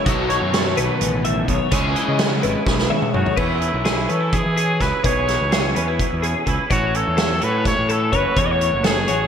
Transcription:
Already playing: E3 E4 B4
0.05 B1 B2 D#3 F#3 B3 D#4 F#4 A4, kick, closed hi-hat
0.29 E3 C#5, closed hi-hat
0.41 F#2
0.53 A3, snare, closed hi-hat
0.77 B1 B4, closed hi-hat
1.00 A1 G#2, closed hi-hat
1.24 A2 E5, closed hi-hat
1.48 B1 B2 C#5, kick, closed hi-hat
1.71 C#2 C#3 G#3 C#4 E4 G#4, kick, closed hi-hat
1.95 E3 D#5, closed hi-hat
2.08 C#3
2.19 B3, snare, closed hi-hat
2.43 G#1 E4 B4, closed hi-hat
2.66 B1 B2, kick, snare
2.79 snare
2.90 C#3 E5, high tom
3.02 mid tom
3.13 F#2 D#3 F#4 C#5, mid tom
3.26 floor tom
3.37 E2 C#4 E4 B4, kick, crash
3.61 E3, closed hi-hat
3.74 B1
3.85 C#4 G#4, snare, closed hi-hat
4.09 E3 C#4 A4 B4, closed hi-hat
4.21 E4
4.33 B2 G#4, kick, closed hi-hat
4.46 E3
4.56 C#4 G#4, closed hi-hat
4.80 C#2 E4 B4, kick, snare, closed hi-hat
5.04 B1 E2 G#4 B4 C#5, kick, closed hi-hat
5.27 E3, snare, closed hi-hat
5.41 C#2
5.51 C#4 G#4, snare, closed hi-hat
5.75 E2 C#4 B4, closed hi-hat
5.88 E4
5.99 B2, kick, closed hi-hat
6.13 E2
6.22 C#4 G#4, closed hi-hat
6.46 C#2 E4 B4, kick, closed hi-hat
6.70 A1 A2 C#4 F#4 C#5, kick, closed hi-hat
6.94 E3 A4, closed hi-hat
7.08 E2
7.17 C#4 A4, snare, closed hi-hat
7.41 A2 F#4 B4 C#5, closed hi-hat
7.64 E3 C#5, kick, snare, closed hi-hat
7.78 A2
7.89 C#4 A4, closed hi-hat
8.12 F#1 F#4 B4 C#5, kick, closed hi-hat
8.36 E2 A2 F#4 C#5, kick, closed hi-hat
8.46 D#5
8.52 C#5
8.61 E3, closed hi-hat
8.73 F#1
8.84 C#4 G#4 A4, snare, closed hi-hat
9.08 A1 F#4 C#5, closed hi-hat

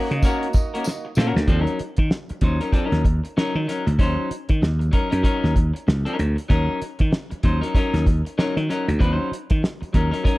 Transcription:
Already playing: A#3 C#4 D#4 F#4 A#4 D#5
0.11 C#3, muted clean electric guitar stroke, closed hi-hat
0.22 A#3 C#4 F#4 A#4, kick, closed hi-hat, tambourine
0.43 closed hi-hat
0.53 muted clean electric guitar stroke, kick, closed hi-hat, tambourine
0.74 A#3 C#4 F#4 A#4, closed hi-hat
0.84 muted clean electric guitar stroke, snare, tambourine
1.05 muted clean electric guitar stroke
1.15 A#2 A#3 C#4 F#4 A#4, snare, tambourine
1.36 D2, muted clean electric guitar stroke, snare
1.48 D#2 F3 C4 D4 A4, kick, closed hi-hat
1.60 F#3 C#4 D#4 A#4
1.67 closed hi-hat
1.79 muted slap bass stroke, closed hi-hat
1.97 D#3, muted clean electric guitar stroke, kick, closed hi-hat
2.11 muted clean electric guitar stroke, snare
2.29 muted clean electric guitar stroke, muted slap bass stroke, closed hi-hat
2.41 D#2 F#3 C#4 D#4 C5, kick, closed hi-hat
2.61 F#3 C#4 D#4 A#4, closed hi-hat
2.72 F3 C4 D4 A4, muted slap bass stroke, kick, closed hi-hat
2.85 F#3 C#4 D#4 A#4
2.92 D#2, snare, closed hi-hat
3.04 muted clean electric guitar stroke, kick, closed hi-hat
3.24 muted clean electric guitar stroke, closed hi-hat
3.37 F#3 C#4 D#4 A#4, snare
3.55 D#3, muted clean electric guitar stroke
3.67 F#3 C#4 D#4 A#4, snare, closed hi-hat
3.87 D2, muted clean electric guitar stroke, closed hi-hat
3.99 D#2 F#3 C#4 D#4 C5, kick, closed hi-hat
4.31 muted slap bass stroke, closed hi-hat
4.49 D#3, muted clean electric guitar stroke, kick, closed hi-hat
4.61 D#2, muted clean electric guitar stroke, snare
4.79 muted clean electric guitar stroke, closed hi-hat
4.91 F#3 C#4 D#4 A#4, kick, closed hi-hat
5.10 F#2 F#3 C#4 D#4 A#4, closed hi-hat
5.23 F#3 C#4 D#4 A#4, muted slap bass stroke, kick, closed hi-hat
5.44 D#2, snare
5.55 muted clean electric guitar stroke, kick, closed hi-hat
5.74 muted clean electric guitar stroke, closed hi-hat
5.87 C#2, muted clean electric guitar stroke, snare
6.05 F#3 C#4 D#4 A#4, closed hi-hat
6.17 D2, muted clean electric guitar stroke, closed hi-hat
6.36 muted clean electric guitar stroke, closed hi-hat
6.49 D#2 F#3 C#4 D#4 A#4, kick, closed hi-hat
6.82 muted slap bass stroke, closed hi-hat
6.99 D#3, muted clean electric guitar stroke, kick, closed hi-hat
7.11 muted clean electric guitar stroke, snare
7.31 muted clean electric guitar stroke, muted slap bass stroke, closed hi-hat
7.43 D#2 F#3 C#4 D#4 C5, kick, closed hi-hat
7.61 F#3 C#4 D#4 A#4, closed hi-hat
7.75 F#3 C#4 D#4 A#4, muted slap bass stroke, kick, closed hi-hat
7.93 D#2, snare, closed hi-hat
8.06 muted clean electric guitar stroke, kick, closed hi-hat
8.25 muted clean electric guitar stroke, closed hi-hat
8.38 F#3 C#4 D#4 A#4, snare
8.56 D#3, muted clean electric guitar stroke, closed hi-hat
8.69 F#3 C#4 D#4 A#4, snare, closed hi-hat
8.88 D2, muted clean electric guitar stroke, closed hi-hat
8.99 D#2 F3 C4 D4 B4, kick, closed hi-hat
9.11 F#3 C#4 D#4 C5
9.31 muted slap bass stroke, closed hi-hat
9.50 D#3, muted clean electric guitar stroke, kick, closed hi-hat
9.63 muted clean electric guitar stroke, snare
9.81 muted clean electric guitar stroke, muted slap bass stroke, closed hi-hat
9.93 D#2 F#3 C#4 D#4 A#4, kick, closed hi-hat
10.11 F#3 C#4 D#4 A#4, closed hi-hat
10.23 F#3 C#4 D#4 A#4, muted slap bass stroke, kick, closed hi-hat

